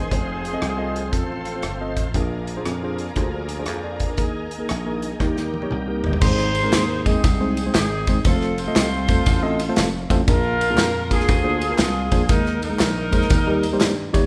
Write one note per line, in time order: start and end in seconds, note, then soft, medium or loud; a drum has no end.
0.00 1.10 C4 medium
0.00 2.11 C4 medium
0.00 1.10 D#4 medium
0.00 1.10 G#4 medium
0.00 1.14 G#4 medium
0.00 2.11 C6 medium
0.11 0.55 F1 medium
0.11 4.15 F3 medium
0.11 2.13 A3 medium
0.11 0.39 C4 medium
0.11 0.39 F4 medium
0.11 0.39 A4 medium
0.11 2.13 C5 medium
0.11 0.40 C5 medium
0.11 4.14 F5 medium
0.11 kick medium
0.11 closed hi-hat medium
0.45 closed hi-hat medium
0.53 0.64 C4 medium
0.53 0.64 F4 medium
0.53 0.64 A4 medium
0.53 0.64 D#5 medium
0.62 1.13 C2 medium
0.62 cross-stick loud
0.62 closed hi-hat medium
0.77 1.01 C4 medium
0.77 1.01 F4 medium
0.77 1.01 A4 medium
0.77 1.01 D#5 medium
0.96 closed hi-hat medium
1.12 1.65 A1 medium
1.12 1.40 C4 medium
1.12 2.11 C4 medium
1.12 1.40 F4 medium
1.12 2.12 F4 medium
1.12 1.40 A4 medium
1.12 1.97 A4 medium
1.12 1.41 C5 medium
1.12 kick medium
1.12 closed hi-hat medium
1.45 closed hi-hat medium
1.55 1.66 C4 medium
1.55 1.66 F4 medium
1.55 1.66 A4 medium
1.55 1.66 C5 medium
1.62 1.97 G1 medium
1.62 cross-stick loud
1.62 closed hi-hat medium
1.80 2.03 C4 medium
1.80 2.03 F4 medium
1.80 2.04 A4 medium
1.80 2.03 D#5 medium
1.97 2.12 A1 medium
1.97 kick medium
1.97 closed hi-hat medium
2.14 2.58 A#1 medium
2.14 2.95 A#2 medium
2.14 6.19 A#3 medium
2.14 4.17 D4 medium
2.14 2.43 D4 medium
2.14 2.43 F4 medium
2.14 4.17 G#4 medium
2.14 2.43 G#4 medium
2.14 2.43 A#4 medium
2.14 4.17 D5 medium
2.14 5.18 G#5 medium
2.14 6.18 A#5 medium
2.14 kick medium
2.14 closed hi-hat medium
2.47 closed hi-hat medium
2.57 2.68 D4 medium
2.57 2.68 F4 medium
2.57 2.68 G#4 medium
2.57 2.68 C5 medium
2.65 3.09 F2 medium
2.65 cross-stick medium
2.65 closed hi-hat medium
2.83 3.05 D4 medium
2.83 3.05 F4 medium
2.83 3.06 G#4 medium
2.83 3.06 C5 medium
2.98 closed hi-hat medium
3.08 cross-stick soft
3.16 3.68 D2 medium
3.16 3.45 D4 medium
3.16 3.45 F4 medium
3.16 3.45 G#4 medium
3.16 3.45 C5 medium
3.16 kick medium
3.16 closed hi-hat medium
3.49 closed hi-hat medium
3.59 3.68 D4 medium
3.59 3.68 F4 medium
3.59 3.68 G#4 medium
3.59 3.68 C5 medium
3.66 4.18 F2 medium
3.66 3.84 G#4 soft
3.66 3.84 F5 medium
3.66 cross-stick medium
3.66 closed hi-hat medium
3.84 4.09 F4 medium
3.84 4.08 D5 medium
4.00 kick medium
4.00 closed hi-hat medium
4.09 4.34 D4 soft
4.09 4.17 A#4 medium
4.17 4.62 D#2 medium
4.17 4.98 D#3 medium
4.17 6.21 D#3 medium
4.17 5.20 G#3 medium
4.17 4.46 A#3 medium
4.17 4.46 D#4 medium
4.17 4.46 G#4 medium
4.17 5.20 G#4 medium
4.17 5.19 A#4 medium
4.17 4.46 A#4 medium
4.17 6.20 D#5 medium
4.17 kick loud
4.17 closed hi-hat medium
4.51 closed hi-hat medium
4.59 4.71 A#3 medium
4.59 4.71 D#4 medium
4.59 4.71 G#4 medium
4.59 4.71 A#4 medium
4.69 5.13 A#1 medium
4.69 cross-stick loud
4.69 closed hi-hat medium
4.85 5.08 A#3 medium
4.85 5.09 D#4 medium
4.85 5.09 G#4 medium
4.85 5.09 A#4 medium
5.02 closed hi-hat medium
5.11 cross-stick soft
5.20 5.64 D#2 medium
5.20 6.01 D#3 medium
5.20 6.21 G3 medium
5.20 5.48 A#3 medium
5.20 5.48 D#4 medium
5.20 5.48 G4 medium
5.20 6.21 G4 medium
5.20 5.49 A#4 medium
5.20 6.21 A#4 medium
5.20 6.21 G5 medium
5.20 kick medium
5.20 snare soft
5.37 snare soft
5.54 high tom medium
5.62 5.73 A#3 medium
5.62 5.73 D#4 medium
5.62 5.74 G4 medium
5.62 5.74 C#5 medium
5.62 high tom medium
5.71 6.00 C2 medium
5.71 mid tom medium
5.87 6.10 A#3 medium
5.87 6.10 D#4 medium
5.87 6.10 G4 medium
5.87 6.11 A#4 medium
6.04 6.20 G1 medium
6.04 floor tom medium
6.13 floor tom medium
6.21 6.65 G#1 loud
6.21 7.02 G#2 medium
6.21 6.50 G#3 medium
6.21 6.50 C4 medium
6.21 6.50 D#4 medium
6.21 7.05 D#4 medium
6.21 6.50 G#4 medium
6.21 7.04 G#4 medium
6.21 7.02 C5 loud
6.21 6.50 C5 medium
6.21 kick loud
6.21 crash loud
6.21 tambourine medium
6.38 snare soft
6.55 ride medium
6.55 tambourine medium
6.63 6.84 G#3 medium
6.63 6.84 C4 medium
6.63 6.84 D#4 medium
6.63 6.84 G#4 medium
6.63 6.84 A#4 medium
6.73 7.17 D#2 loud
6.73 snare loud
6.73 clap loud
6.73 ride medium
6.73 tambourine loud
7.06 7.21 G#3 medium
7.06 7.74 C4 medium
7.06 7.21 C4 medium
7.06 7.21 D#4 medium
7.06 7.73 D#4 medium
7.06 7.73 G#4 medium
7.06 7.21 G#4 medium
7.06 7.21 D#5 medium
7.06 kick loud
7.06 ride medium
7.06 tambourine medium
7.24 7.67 C2 loud
7.24 kick loud
7.24 ride medium
7.24 tambourine medium
7.40 7.58 G#3 medium
7.40 7.58 C4 medium
7.40 7.58 D#4 medium
7.40 7.58 G#4 medium
7.40 7.58 C5 medium
7.57 ride medium
7.57 tambourine medium
7.66 7.86 G#3 medium
7.66 7.86 C4 medium
7.66 7.86 D#4 medium
7.66 7.86 G#4 medium
7.66 7.86 C5 medium
7.74 8.18 G#1 loud
7.74 8.22 C4 medium
7.74 8.22 D#4 medium
7.74 8.22 G#4 loud
7.74 snare loud
7.74 clap loud
7.74 ride medium
7.74 tambourine loud
8.07 8.18 G#3 medium
8.07 8.18 C4 medium
8.07 8.18 D#4 medium
8.07 8.18 G#4 medium
8.07 8.18 C5 medium
8.07 kick loud
8.07 ride medium
8.07 tambourine medium
8.25 8.68 F1 loud
8.25 8.53 A3 medium
8.25 8.53 C4 medium
8.25 9.23 C4 medium
8.25 8.54 F4 medium
8.25 8.58 F4 medium
8.25 8.53 A4 medium
8.25 8.58 A4 loud
8.25 8.54 C5 medium
8.25 kick loud
8.25 ride medium
8.25 tambourine medium
8.41 snare soft
8.58 10.07 F4 medium
8.58 10.07 A4 medium
8.58 10.11 C5 loud
8.58 ride medium
8.58 tambourine medium
8.67 8.87 A3 medium
8.67 8.87 C4 medium
8.67 8.87 F4 medium
8.67 8.87 A4 medium
8.67 8.87 D#5 medium
8.76 9.19 C2 loud
8.76 snare loud
8.76 clap medium
8.76 ride medium
8.76 tambourine loud
9.08 9.24 A3 medium
9.08 9.23 C4 medium
9.08 9.24 F4 medium
9.08 9.24 A4 medium
9.08 9.24 C5 medium
9.08 kick loud
9.08 ride medium
9.08 tambourine medium
9.26 9.70 A1 loud
9.26 kick loud
9.26 ride medium
9.26 tambourine medium
9.42 9.60 A3 medium
9.42 9.60 C4 medium
9.42 9.60 F4 medium
9.42 9.60 A4 medium
9.42 9.60 D#5 loud
9.59 ride medium
9.59 tambourine medium
9.69 9.89 A3 medium
9.69 9.89 C4 medium
9.69 9.89 F4 medium
9.69 9.89 A4 medium
9.69 9.89 C5 loud
9.76 10.05 F1 loud
9.76 10.24 F5 medium
9.76 snare loud
9.76 clap medium
9.76 ride medium
9.76 tambourine loud
10.10 10.25 A1 medium
10.10 10.20 A3 medium
10.10 10.20 C4 medium
10.10 10.20 F4 medium
10.10 10.20 A4 medium
10.10 10.20 C5 loud
10.10 kick medium
10.10 ride medium
10.10 tambourine medium
10.28 10.79 A#1 loud
10.28 11.07 A#2 medium
10.28 10.56 A#3 medium
10.28 10.55 D4 medium
10.28 11.11 D4 medium
10.28 10.56 F4 medium
10.28 11.11 F4 medium
10.28 10.56 G#4 medium
10.28 10.56 A#4 medium
10.28 11.08 A#4 loud
10.28 kick loud
10.28 ride medium
10.28 tambourine medium
10.61 ride medium
10.61 tambourine medium
10.70 10.90 A#3 medium
10.70 10.90 D4 medium
10.70 10.90 F4 medium
10.70 10.90 G#4 medium
10.70 10.90 A#4 medium
10.78 11.21 F2 loud
10.78 snare loud
10.78 clap loud
10.78 ride medium
10.78 tambourine loud
11.11 11.26 A#3 medium
11.11 11.26 D4 medium
11.11 11.79 D4 medium
11.11 11.26 F4 medium
11.11 11.79 F4 medium
11.11 11.26 G#4 medium
11.11 11.79 G#4 loud
11.11 11.26 A#4 medium
11.11 kick medium
11.11 ride medium
11.11 tambourine medium
11.20 snare soft
11.28 11.72 D2 loud
11.28 kick loud
11.28 ride medium
11.28 tambourine medium
11.44 11.62 A#3 medium
11.44 11.62 D4 medium
11.44 11.62 F4 medium
11.44 11.62 G#4 medium
11.44 11.62 C5 medium
11.61 ride medium
11.61 tambourine medium
11.69 11.90 A#3 medium
11.69 11.90 D4 medium
11.69 11.90 F4 medium
11.69 11.90 G#4 medium
11.69 11.90 A#4 medium
11.78 12.07 C2 loud
11.78 12.27 D4 medium
11.78 12.27 F4 medium
11.78 12.27 G#4 loud
11.78 snare loud
11.78 clap medium
11.78 ride medium
11.78 tambourine loud
12.11 12.27 A#1 medium
12.11 12.22 A#3 medium
12.11 12.22 D4 medium
12.11 12.22 F4 medium
12.11 12.22 G#4 medium
12.11 12.22 C5 medium
12.11 kick loud
12.11 ride medium
12.11 tambourine medium
12.29 12.73 D#2 loud
12.29 13.09 D#3 medium
12.29 12.57 G#3 medium
12.29 12.57 A#3 medium
12.29 12.57 D#4 medium
12.29 12.62 D#4 medium
12.29 12.57 G#4 medium
12.29 12.57 A#4 medium
12.29 12.62 A#4 loud
12.29 kick loud
12.29 ride medium
12.29 tambourine medium
12.46 snare soft
12.62 14.11 D#4 medium
12.62 14.11 A#4 loud
12.62 ride medium
12.62 tambourine medium
12.70 12.91 G#3 medium
12.70 12.91 A#3 medium
12.70 12.91 D#4 medium
12.70 12.91 G#4 medium
12.70 12.91 A#4 medium
12.79 13.23 A#1 loud
12.79 snare loud
12.79 clap loud
12.79 ride medium
12.79 tambourine loud
13.11 13.27 G#3 medium
13.11 13.27 A#3 medium
13.11 13.27 D#4 medium
13.11 13.28 G#4 medium
13.11 13.28 C5 medium
13.11 kick medium
13.11 ride medium
13.11 tambourine medium
13.21 snare soft
13.30 13.74 D#2 loud
13.30 14.10 D#3 medium
13.30 kick loud
13.30 ride medium
13.30 tambourine medium
13.47 13.64 G3 medium
13.47 13.65 A#3 medium
13.47 13.65 D#4 medium
13.47 13.65 G4 medium
13.47 13.65 A#4 medium
13.63 ride medium
13.63 tambourine medium
13.73 13.93 G3 medium
13.73 13.93 A#3 medium
13.73 13.93 D#4 medium
13.73 13.93 G4 medium
13.73 13.93 C5 medium
13.80 14.09 G2 medium
13.80 snare loud
13.80 clap loud
13.80 ride medium
13.80 tambourine medium
14.13 14.26 G1 medium
14.13 14.24 G3 loud
14.13 14.24 A#3 medium
14.13 14.23 D#4 medium
14.13 14.24 G4 medium
14.13 14.24 C#5 loud
14.13 kick medium
14.13 ride medium
14.13 tambourine medium